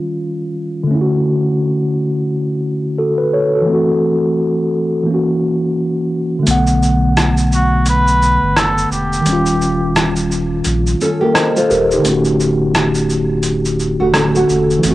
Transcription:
Already playing: tine electric piano D#3 G3 C#4 F4
0.83 tine electric piano D3 A3
0.91 tine electric piano C#4 E4
1.01 tine electric piano F#4
2.98 tine electric piano F#4 A4
3.18 tine electric piano B4
3.33 tine electric piano A4 C#5
3.55 tine electric piano F#4 A4
3.62 tine electric piano E3 A3
3.69 tine electric piano C4
3.73 tine electric piano F#4
5.03 tine electric piano E3 A#3
5.11 tine electric piano C#4 F#4
6.39 tine electric piano D3 A3
6.47 sub bass B1, tine electric piano B3, closed hi-hat, shaker
6.51 tine electric piano F#5
6.67 shaker
6.83 shaker
7.17 cross-stick, closed hi-hat, shaker
7.37 shaker
7.52 muted trumpet F#4, shaker
7.86 muted trumpet B4, closed hi-hat, shaker
8.07 shaker
8.22 shaker
8.43 sub bass G1
8.56 sub bass F#1, muted trumpet A4, cross-stick, closed hi-hat, shaker
8.78 shaker
8.91 sub bass E1, muted trumpet G4, shaker
9.13 shaker
9.21 tine electric piano D#3
9.25 sub bass D#1, tine electric piano G3 C#4, closed hi-hat, shaker
9.33 tine electric piano F4
9.46 shaker
9.62 shaker
9.96 cross-stick, closed hi-hat, shaker
10.16 shaker
10.32 shaker
10.65 sub bass A#1, closed hi-hat, shaker
10.87 shaker
11.01 nylon-string guitar C#4 A4, shaker
11.21 nylon-string guitar A#3 G4
11.34 tine electric piano C5 D#5, cross-stick, closed hi-hat, shaker
11.56 nylon-string guitar A3 F4, tine electric piano A4 C5, shaker
11.70 sub bass D#1, tine electric piano G4 A#4, shaker
11.91 tine electric piano D#4 G4, shaker
11.99 tine electric piano D3
12.03 sub bass D1, tine electric piano A3 C#4, closed hi-hat, shaker
12.10 tine electric piano F#4
12.25 shaker
12.40 shaker
12.75 cross-stick, closed hi-hat, shaker
12.95 shaker
13.10 shaker
13.43 closed hi-hat, shaker
13.65 shaker
13.80 shaker
14.00 sub bass E1, nylon-string guitar A3 F#4
14.13 sub bass D1, tine electric piano D3 A3 C#4, nylon-string guitar C#4 A4, cross-stick, closed hi-hat, shaker
14.19 tine electric piano F#4
14.35 nylon-string guitar A3 F#4, shaker
14.49 sub bass E1, shaker
14.70 shaker
14.79 tine electric piano E3 A3
14.83 sub bass F#1, tine electric piano C4, closed hi-hat, shaker
14.91 tine electric piano F#4

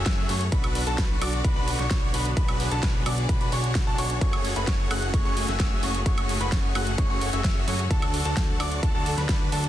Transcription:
Already playing: string section C#3 F#3 A3 G#4
0.06 analog synth bass F#2, supersaw synth A3 C#4 F#4 G#4 E5, grand piano E6, kick, snare, closed hi-hat
0.29 analog synth bass F#2, supersaw synth A3 C#4 F#4 G#4 C#5, grand piano C#6, open hi-hat
0.41 closed hi-hat
0.52 analog synth bass B1, string section D3 F#3 B3 F#4, supersaw synth D4 F#4 B4, grand piano B5, kick, closed hi-hat
0.64 closed hi-hat, high woodblock
0.75 open hi-hat
0.87 analog synth bass B1, supersaw synth D4 F#4 A4, grand piano A5, closed hi-hat
0.98 supersaw synth D4 F#4 B4, kick, snare, closed hi-hat
1.21 analog synth bass B1, supersaw synth D4 F#4 D5, grand piano D6, open hi-hat, high woodblock
1.33 closed hi-hat
1.44 supersaw synth D4 F#4 B4, grand piano B5, kick, closed hi-hat
1.56 analog synth bass B1, supersaw synth D4 F#4 B4, grand piano B5
1.68 open hi-hat
1.79 analog synth bass B1, supersaw synth D4 F#4 C#5, grand piano C#6, snare, closed hi-hat
1.91 supersaw synth D4 F#4 C#5, grand piano C#6, kick, snare, closed hi-hat
2.14 analog synth bass B1, supersaw synth D4 F#4 B4, grand piano B5, open hi-hat
2.25 closed hi-hat
2.37 supersaw synth D4 F#4 B4, string section G#4, grand piano B5, kick, closed hi-hat
2.48 closed hi-hat, high woodblock
2.60 open hi-hat
2.71 analog synth bass B1, supersaw synth D4 F#4 A4, grand piano A5, closed hi-hat
2.83 supersaw synth D4 F#4 B4, kick, snare, closed hi-hat
3.06 analog synth bass B1, supersaw synth D4 F#4 D5, grand piano D6, open hi-hat, high woodblock
3.18 closed hi-hat
3.29 supersaw synth D4 F#4 B4, grand piano B5, kick, closed hi-hat
3.41 analog synth bass B1, supersaw synth D4 F#4 B4, grand piano B5, closed hi-hat
3.52 analog synth bass B1, supersaw synth D4 F#4 C#5, grand piano C#6, open hi-hat
3.64 closed hi-hat
3.75 kick, snare, closed hi-hat
3.87 analog synth bass B1, supersaw synth D4 F#4 A4, grand piano A5
3.98 analog synth bass B1, supersaw synth D4 F#4 C#5, grand piano C#6, open hi-hat
4.10 closed hi-hat
4.21 analog synth bass F#1, string section C#3 A3 F#4 G#4, supersaw synth A3 C#4 F#4 G#4 C#5, grand piano C#6, kick, closed hi-hat
4.33 closed hi-hat, high woodblock
4.45 open hi-hat
4.56 analog synth bass F#1, supersaw synth A3 C#4 F#4 G#4 B4, grand piano B5, closed hi-hat
4.67 supersaw synth A3 C#4 F#4 G#4 C#5, grand piano C#6, kick, snare, closed hi-hat
4.91 analog synth bass F#1, supersaw synth A3 C#4 F#4 G#4 F#5, grand piano F#6, open hi-hat, high woodblock
5.02 closed hi-hat
5.14 supersaw synth A3 C#4 F#4 G#4 C#5, grand piano C#6, kick, closed hi-hat
5.25 analog synth bass F#1, supersaw synth A3 C#4 F#4 G#4 C#5, grand piano C#6
5.37 open hi-hat
5.48 analog synth bass F#1, supersaw synth A3 C#4 F#4 G#4 E5, grand piano E6, snare, closed hi-hat
5.60 supersaw synth A3 C#4 F#4 G#4 E5, kick, snare, closed hi-hat
5.83 analog synth bass F#1, supersaw synth A3 C#4 F#4 G#4 C#5, grand piano C#6, open hi-hat
5.94 closed hi-hat
6.06 supersaw synth A3 C#4 F#4 G#4 C#5, grand piano C#6, kick, closed hi-hat
6.18 closed hi-hat, high woodblock
6.29 open hi-hat
6.40 analog synth bass F#1, supersaw synth A3 C#4 F#4 G#4 B4, grand piano B5, closed hi-hat
6.52 analog synth bass F#1, supersaw synth A3 C#4 F#4 G#4 C#5, kick, snare, closed hi-hat
6.75 analog synth bass F#1, supersaw synth A3 C#4 F#4 G#4 F#5, grand piano F#6, open hi-hat, high woodblock
6.87 closed hi-hat
6.98 supersaw synth A3 C#4 F#4 G#4 C#5, grand piano C#6, kick, closed hi-hat
7.10 analog synth bass F#1, supersaw synth A3 C#4 F#4 G#4 C#5, grand piano C#6
7.21 open hi-hat
7.33 analog synth bass F#1, supersaw synth A3 C#4 F#4 G#4 E5, grand piano E6, closed hi-hat
7.44 supersaw synth A3 C#4 F#4 G#4 E5, kick, snare, closed hi-hat
7.67 analog synth bass F#2, supersaw synth A3 C#4 F#4 G#4 C#5, grand piano C#6, open hi-hat
7.79 closed hi-hat
7.91 analog synth bass D2, string section D3 F#3 A3, supersaw synth D4 F#4 A4, grand piano A5, kick, closed hi-hat
8.02 closed hi-hat, high woodblock
8.14 open hi-hat
8.25 analog synth bass D2, supersaw synth D4 F#4 A4, grand piano A5, closed hi-hat
8.37 supersaw synth D4 F#4 A4, kick, snare, closed hi-hat
8.60 analog synth bass D2, supersaw synth D4 F#4 D5, grand piano D6, open hi-hat, high woodblock
8.72 closed hi-hat
8.83 supersaw synth D4 F#4 A4, grand piano A5, kick, closed hi-hat
8.95 analog synth bass D2, supersaw synth D4 F#4 A4, grand piano A5
9.06 open hi-hat
9.17 analog synth bass D2, supersaw synth D4 F#4 B4, grand piano B5, snare, closed hi-hat
9.29 supersaw synth D4 F#4 B4, grand piano B5, kick, snare, closed hi-hat
9.52 analog synth bass D2, supersaw synth D4 F#4 A4, grand piano A5, open hi-hat
9.64 closed hi-hat

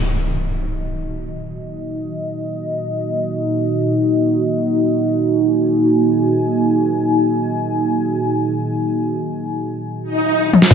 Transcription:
Already playing: analog synth pad A#3 D#4 F#4 D#5, impact
5.19 analog synth pad G#5
10.02 swell
10.53 high tom
10.62 snare
10.71 wobble bass D#1, kick, closed hi-hat, sub drop

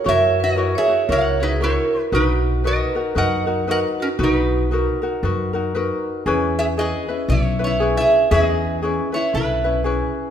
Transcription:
0.04 upright bass F#2, ukulele E4 F#4 A#4 C#5, vibraphone C#5
0.09 resonator guitar played with a steel bar A#4 E5
0.40 resonator guitar played with a steel bar F#4 D#5, vibraphone B4
0.56 ukulele E4 F#4 A#4 C#5
0.75 resonator guitar played with a steel bar G#4 E5, vibraphone C#5
0.88 ukulele E4 F#4 C#5
1.09 upright bass C#2, ukulele E4 F#4 A#4 C#5, resonator guitar played with a steel bar A#4 F#5, vibraphone C#5
1.40 resonator guitar played with a steel bar D#4 B4, ukulele E4 F#4 C#5, vibraphone G#4
1.61 ukulele E4 F#4 A#4 C#5, resonator guitar played with a steel bar E4 C#5, vibraphone A#4
2.12 upright bass B1, ukulele D#4 F#4 B4, resonator guitar played with a steel bar D#4 B4, vibraphone F#4
2.64 ukulele D#4 F#4 A#4 B4, resonator guitar played with a steel bar F#4 D#5, vibraphone B4
2.95 ukulele D#4 F#4 A#4
3.15 upright bass F#2, ukulele D#4 F#4 A#4 B4, resonator guitar played with a steel bar A#4 F#5, vibraphone D#5
3.46 ukulele D#4 F#4 A#4
3.67 ukulele D#4 F#4 A#4 B4, resonator guitar played with a steel bar A#4 F#5, vibraphone D#5
4.00 resonator guitar played with a steel bar C#4 A#4, vibraphone F#4
4.19 upright bass B1, ukulele D#4 F#4 B4, vibraphone F#4
4.23 resonator guitar played with a steel bar D#4 B4
4.71 ukulele D#4 F#4 A#4 B4
5.02 ukulele D#4 F#4 A#4
5.23 upright bass F#2, ukulele D#4 F#4 A#4 B4
5.53 ukulele D#4 F#4 A#4
5.75 ukulele D#4 F#4 A#4 B4
6.26 upright bass E2, ukulele C#4 E4 G#4 B4
6.59 resonator guitar played with a steel bar G#4 E5
6.77 ukulele C#4 E4 G#4 B4, resonator guitar played with a steel bar G#4 D#5
7.08 ukulele C#4 E4 B4
7.28 upright bass B1, resonator guitar played with a steel bar E4 C#5
7.59 ukulele C#4 E4 B4
7.64 resonator guitar played with a steel bar E4 C#5
7.80 ukulele C#4 E4 G#4 B4
7.97 resonator guitar played with a steel bar G#4 E5
8.31 upright bass E2, ukulele C#4 E4 G#4 B4, resonator guitar played with a steel bar G#4 E5
8.42 resonator guitar played with a steel bar D#5
8.82 ukulele C#4 E4 G#4 B4
9.12 ukulele C#4 E4 B4, resonator guitar played with a steel bar E4 C#5
9.34 upright bass B1, resonator guitar played with a steel bar E4 B4
9.64 ukulele C#4 E4 B4
9.84 ukulele C#4 E4 G#4 B4

